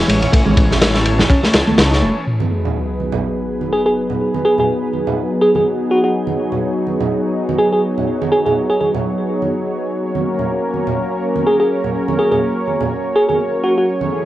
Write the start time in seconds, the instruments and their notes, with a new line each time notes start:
Already playing: analog synth pad E3 C#4 G#4 C#5
0.08 detuned saw bass A1, picked electric bass G#3, ride
0.21 ride, low conga
0.32 detuned saw bass A1, picked electric bass A3, analog synth pad A5, kick, ride
0.46 picked electric bass G#3, high conga
0.57 kick, ride
0.71 snare, low conga
0.82 snare, ride
0.94 picked electric bass E4, snare
1.05 ride, high conga
1.18 snare, low conga
1.30 picked electric bass C#4, kick, ride
1.43 picked electric bass A3, snare
1.53 detuned saw bass C#2, snare, ride
1.67 detuned saw bass C#2, picked electric bass A3, high conga
1.78 detuned saw bass C#2, snare, ride
1.92 picked electric bass D#4, snare
2.02 detuned saw bass E1, picked electric bass A3
2.27 analog synth pad F#3 B3 D#4 G#4 B4, sub drop
2.40 high conga
2.65 low conga
3.00 high conga
3.12 low conga
3.61 high conga
3.73 fm electric piano G#4
3.86 fm electric piano G#4
4.10 low conga
4.34 high conga
4.45 fm electric piano G#4
4.58 fm electric piano G#4, low conga
4.93 high conga
5.07 low conga
5.41 fm electric piano G#4
5.55 fm electric piano G#4, high conga
5.91 fm electric piano F#4
6.04 fm electric piano F#4
6.14 analog synth pad C#5
6.27 high conga
6.52 low conga
6.87 high conga
7.01 low conga
7.49 high conga
7.58 fm electric piano G#4
7.73 fm electric piano G#4
7.98 low conga
8.22 high conga
8.32 fm electric piano G#4
8.45 fm electric piano G#4, low conga
8.70 fm electric piano G#4
8.80 fm electric piano G#4, high conga
8.95 low conga
9.42 high conga
10.00 analog synth pad A#3 C#4 A#4
10.15 high conga
10.39 low conga
10.74 high conga
10.87 low conga
11.36 high conga
11.47 fm electric piano G#4
11.60 fm electric piano G#4
11.84 low conga
12.08 high conga
12.19 fm electric piano G#4
12.31 fm electric piano G#4, low conga
12.67 high conga
12.81 low conga
13.16 fm electric piano G#4
13.29 fm electric piano G#4, high conga
13.64 fm electric piano F#4
13.78 fm electric piano F#4
13.87 analog synth pad E3 A3 C#4 G#4
14.01 high conga